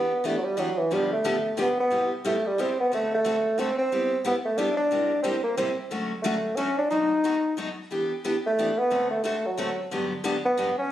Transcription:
Already playing: E3 B3 D4 G4
0.24 E3 A3 B3 D4 G4
0.38 F#3
0.44 G3
0.57 E3 F#3 B3 D4 G4
0.78 E3
0.91 G2 D3 F3 G3 B3 D4 G4
1.12 A3
1.24 G2 D3 F3 B3 D4 G4
1.57 G2 D3 F3 B3 D4 G4
1.62 B3
1.80 B3
1.90 C3 G3 B3 E4 G4
2.24 C3 G3 A3 B3 E4 G4
2.47 G3
2.58 C3 G3 B3 C4 E4 G4
2.81 B3
2.92 D3 A3 C4 F#4 A4
3.15 A3
3.24 D3 A3 C4 F#4 A4
3.58 D3 A3 C4 F#4 A4
3.79 C4
3.92 G3 B3 E4 G4
4.25 G3 B3 E4 G4
4.45 A3
4.58 G3 B3 D4 E4 G4
4.77 D4
4.91 C3 G3 A#3 E4 G4
5.23 C3 G3 A#3 C4 E4 G4
5.44 A#3
5.57 C3 G3 A#3 C4 E4 G4
5.91 D3 F#3 A3 C#4 F#4
6.22 D3 F#3 A3 C#4 F#4
6.56 D3 F#3 A3 C#4 F#4
6.78 D4
6.90 B2 F#3 A3 D#4 F#4
7.24 B2 F#3 A3 D#4 F#4
7.57 B2 F#3 A3 D#4 F#4
7.91 E3 B3 D4 G4
8.24 E3 B3 D4 G4
8.47 A3
8.59 E3 B3 D4 G4
8.79 B3
8.90 D3 A3 C4 F#4 A4
9.11 A3
9.24 D3 A3 C4 F#4 A4
9.46 F#3
9.57 D3 A3 C4 F#4 A4
9.91 G2 D3 F#3 B3 D4 G4
10.24 G2 D3 F#3 B3 D4 G4
10.45 B3
10.57 G2 D3 F#3 B3 D4 G4
10.78 C#4

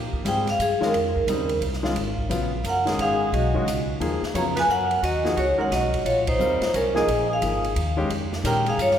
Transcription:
Already playing: A#2
0.13 muted upright bass stroke, kick
0.25 G#2 G3 C4 F4 G#4 G5, hi-hat pedal, ride
0.47 F5, snare, ride
0.59 G2 G#4, hi-hat pedal, ride
0.81 D#3 G#3 C#4 F4 A#4, muted upright bass stroke, snare
0.93 F2, ride
1.16 kick
1.27 D#2 C#3 G3 C4 D#4, hi-hat pedal, ride
1.49 ride
1.61 C2, ride
1.73 snare
1.83 D#3 G#3 C#4 F4, snare
1.96 G#1, ride
2.18 kick
2.29 A#1 C#3 F#3 B3 F4, hi-hat pedal, ride
2.64 F#1 A#4, hi-hat pedal, ride
2.69 F#5
2.85 D#3 G#3 C#4 G#4, snare, ride
2.98 G#1 G#4 F5, ride
3.32 B1 F#4 D#5, ride
3.54 D#3 G#3 C#4 F#4, kick
3.66 C#2, hi-hat pedal, ride
4.00 D#2 F3 A#3 D#4 G#4, ride
4.22 muted upright bass stroke, snare
4.34 F2 C#3 F#3 B3 F4 C#5 A#5, hi-hat pedal, ride
4.56 B4 G#5, snare, ride
4.68 F#2 A#4 F#5, hi-hat pedal
4.91 ride
5.02 D#2 F#4 D#5, ride
5.24 F3 A#3 D#4 G#4, snare
5.36 C#2 F#4 C#5, ride
5.58 D#3 G#3 C#4 F#4 A#4 F#5, muted upright bass stroke
5.71 B1 F#4 D#5, snare, hi-hat pedal, ride
5.94 kick, ride
6.05 A#1 F4 C#5, ride
6.27 D#4 C5, kick, ride
6.39 D#2 G3 C4 F4 A#4, hi-hat pedal
6.61 muted upright bass stroke, snare, ride
6.74 C2 C#4 A#4, hi-hat pedal, ride
6.94 F3 A#3 D#4 G#4 D#5, snare
7.08 A#1, ride
7.30 G#4 F5
7.42 G#1 F3 A#3 D#4 G#4, hi-hat pedal, ride
7.64 ride
7.76 D#2, ride
7.97 D#3 G#3 C#4 G4
8.10 F2, ride
8.33 snare
8.44 A#2 D#3 G#3 C#4 G4 A#4 G5, hi-hat pedal, ride
8.66 G#4 F5, ride
8.78 G2 F4, hi-hat pedal, ride
8.82 C#5
8.91 snare

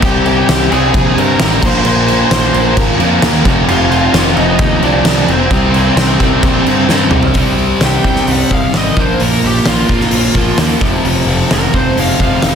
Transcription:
0.02 C2 C3 G4 G5, kick, crash
0.06 G3 C4
0.26 G4 G5, crash
0.49 C2, snare, crash
0.72 C2 C3 G3 C4 G#4 G#5, crash
0.94 A#1, kick, crash
1.16 G2 A#4 A#5, crash
1.39 A1 C3 G3 C4, snare, crash
1.62 A#1 A#2 F3 C5, kick, crash
1.66 A#3 C6
1.85 A#1 C5 C6, crash
2.08 crash
2.31 A#1 A#2 F3 A#3, snare, crash
2.54 A#1, crash
2.77 G#1, kick, crash
2.99 F2 A#2 F3 A#3, crash
3.22 D#2, snare, crash
3.45 F1 F2 C3, kick, crash
3.49 F3
3.68 F1 F4 F5, crash
3.91 F4 F5, crash
4.13 F1 F2 C3 F3, snare, crash
4.37 F1 D#4 D#5, crash
4.59 D#2, kick, crash
4.82 C2 C3 F3 D4 D5, crash
4.87 F2
5.04 C2, snare, crash
5.27 F1 C4 C5, crash
5.50 C2 C3 G3 C4, kick, crash
5.74 crash
5.96 C2, snare, crash
6.19 C2 C3 G3 C4, kick, crash
6.43 A#1, kick, crash
6.66 G2, crash
6.89 G2 C3 G3, snare
6.93 C4
7.11 C2, mid tom
7.23 floor tom
7.34 C2 C3 G3, kick, open hi-hat
7.39 C4
7.57 C2
7.81 C2 G3, snare, open hi-hat
7.86 G5
8.04 C2 G3 C4 D4, kick
8.08 C3
8.16 snare
8.27 C2 G3, open hi-hat
8.32 F#5
8.50 C2 D#3 F5, kick
8.73 G#1 C3 G3 C4, snare, open hi-hat
8.78 D#5
8.96 A#1 A#2 F3 A#3 C5, kick
9.20 A#1 A#2 A#4, open hi-hat
9.44 A#1 G4
9.65 A#1 A#2 F3 A#3 F4, snare, open hi-hat
9.70 A#3
9.89 A#1 C4, kick
10.00 snare
10.11 A#1 A#3, open hi-hat
10.34 A#1 F3 A#3, kick
10.39 A#2
10.58 D#2 A#3, snare, open hi-hat
10.81 F1 F2 C3, kick
10.85 F3
11.04 F1 F2, open hi-hat
11.27 F1
11.50 F1 F2 C3 G#3 A#4, snare, open hi-hat
11.55 F3
11.74 F1 C4 C5, kick
11.97 F1 G#3 F5, open hi-hat
12.20 F1 C3 F3 F5, kick
12.24 F2
12.41 F1 G#3, snare, open hi-hat

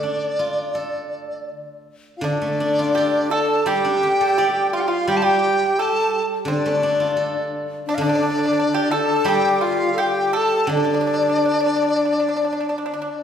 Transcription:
Already playing: D3 A3 D5
0.03 D4
0.39 F4
0.75 A4
2.17 F4 F5
2.21 D3 D4 D5
2.42 A3
2.60 D4
2.79 F4
2.95 G4 A4
3.30 A4 A5
3.61 A5
3.66 G3 G4 G5
3.84 D4
4.03 G4
4.21 A4
4.38 G4 D5
4.73 F4 F5
4.80 G5
4.87 F4 F5
5.08 G3 G4 G5
5.17 A5
5.22 G4 G5
5.79 A4 A5
6.45 D3 C4 D4
6.51 D5
6.66 A3
6.78 D4
6.83 D4
7.00 F4
7.17 A4
7.86 D4 D5
7.94 D3 F5
8.01 D4 D5
8.09 D4
8.15 D4
8.23 D4
8.30 D4
8.38 D4
8.45 D4
8.53 D4
8.60 D4
8.74 G4
8.91 A4 A5
9.24 G3 G4 G5
9.29 G4
9.55 G5
9.61 F4 F5
9.93 A4
9.98 G4 G5
10.33 A4 A5
10.67 D3 D4
10.72 D4 D5
10.77 D4
10.84 D4
10.94 D4
11.01 D4
11.07 D4
11.14 D4
11.22 D4
11.29 D4
11.38 D4
11.45 D4
11.52 D4
11.60 D4
11.66 D4
11.76 D4
11.83 D4
11.90 D4
11.96 D4
12.05 D4
12.13 D4
12.20 D4
12.29 D4
12.36 D4
12.45 D4
12.53 D4
12.60 D4
12.69 D4
12.78 D4
12.86 D4
12.94 D4
13.02 D4

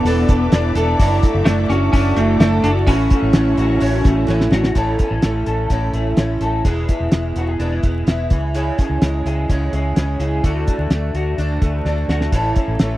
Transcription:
Already playing: E3 B3 A4 B4 E5 A5 D6
0.05 E1 E3 B3 D4 A4, hi-hat pedal, open hi-hat
0.28 E1 B3 D4 A4, kick, hi-hat pedal, open hi-hat
0.52 E1 E3 B3 D4 A4, snare, hi-hat pedal, open hi-hat
0.75 E1 B3 D4 A4, hi-hat pedal, open hi-hat
0.99 F#1 E3 F#3 D4 E4 A4 F#5, kick, hi-hat pedal, open hi-hat
1.23 A3 D4 E4 A4, kick, hi-hat pedal, open hi-hat
1.34 F#1
1.45 F#1 F#3 A3 D4 E4, snare, hi-hat pedal, open hi-hat
1.50 A4
1.69 F#1 C#4 D4 E4 F#4 A4, hi-hat pedal, open hi-hat
1.93 F#1 F#3 C#4 D4 E4 A4, kick, hi-hat pedal, open hi-hat
2.16 F#1 A3 D4 E4 A4, hi-hat pedal, open hi-hat
2.40 F#1 F#3 A3 D4 E4 A4, snare, hi-hat pedal, open hi-hat
2.64 F#1 D4 E4 F#4 A4, hi-hat pedal, open hi-hat
2.87 A1 A2 E3 F#3 C#4 E4 E5 C#6, kick, hi-hat pedal, open hi-hat
3.10 F#3 A3 C#4 E4, kick, hi-hat pedal, open hi-hat
3.22 A1
3.33 A1 A2 F#3 C#4 E4, snare, hi-hat pedal, open hi-hat
3.57 A1 F#3 C#4 E4 F#4, hi-hat pedal, open hi-hat
3.80 A1 A2 F#3 C#4 E4, hi-hat pedal, open hi-hat
4.04 A1 F#3 A3 C#4 E4, kick, snare, hi-hat pedal, open hi-hat
4.27 A1 A2 F#3 C#4 E4, snare
4.41 snare
4.51 A1 F#3 C#4 E4 F#4, snare
4.64 snare
4.75 A1 A2 E3 A3 C#4 E4 A4, kick, closed hi-hat
4.98 A3 B3 C#4 E4, kick, closed hi-hat
5.11 A1 C#4
5.22 A1 E3 A3 C#4 E4, snare, closed hi-hat
5.46 A1 A3 C#4 E4 A4, closed hi-hat
5.70 A1 A2 E3 A3 C#4 E4, kick, closed hi-hat
5.93 A1 A3 C#4 E4, closed hi-hat
6.17 A1 E3 A3 C#4 E4, snare, closed hi-hat
6.41 A1 A3 C#4 E4 A4, closed hi-hat
6.65 E1 E3 G#3 B3 E4 G#4, kick, closed hi-hat
6.89 G#3 B3 E4, kick, closed hi-hat
7.00 E1
7.12 E1 E3 G#3 B3, snare, closed hi-hat
7.16 E4
7.36 E1 G#3 B3 E4 F#4, closed hi-hat
7.48 G#4
7.59 E1 E3 G#3 B3 D4 E4, closed hi-hat
7.72 E4
7.83 E1 G#3 B3 E4, kick, closed hi-hat
8.07 E1 E3 G#3 B3 E4, snare, closed hi-hat
8.30 C#2 E3 G#3 C#4 E4, kick, closed hi-hat
8.55 C#3 E3 G#3 C#4 E4 G#4, closed hi-hat
8.78 G#3 C#4 E4, kick, closed hi-hat
8.89 C#2
9.02 C#2 C#3 G#3 C#4 E4, snare, closed hi-hat
9.25 C#2 G#3 C#4 E4 G#4, closed hi-hat
9.49 C#2 C#3 G#3 C#4 E4, kick, closed hi-hat
9.73 C#2 G#3 C#4 E4, closed hi-hat
9.96 C#2 C#3 G#3 C#4 E4, snare, closed hi-hat
10.19 C#2 G#3 C#4 E4 G#4, closed hi-hat
10.44 D2 D3 A3 D4 F#4, kick, closed hi-hat
10.67 A3 D4 F#4, kick, closed hi-hat
10.78 D2
10.90 D2 D3 A3 D4 F#4, snare, closed hi-hat
11.14 D2 A3 D4 F#4, closed hi-hat
11.38 D2 D3 A3 D4 F#4, closed hi-hat
11.61 D2 A3 D4 F#4, kick, snare, closed hi-hat
11.66 A3
11.85 D2 D3 A3 D4, snare
11.89 F#4
12.08 D2 D4 F#4, snare
12.12 A3
12.21 snare
12.32 A1 A2 E3 A3 C#4 E4 A4, kick, closed hi-hat
12.56 C#4 E4, kick, closed hi-hat
12.60 A3
12.68 A1
12.79 A1 E3 A3 C#4, snare, closed hi-hat
12.84 E4

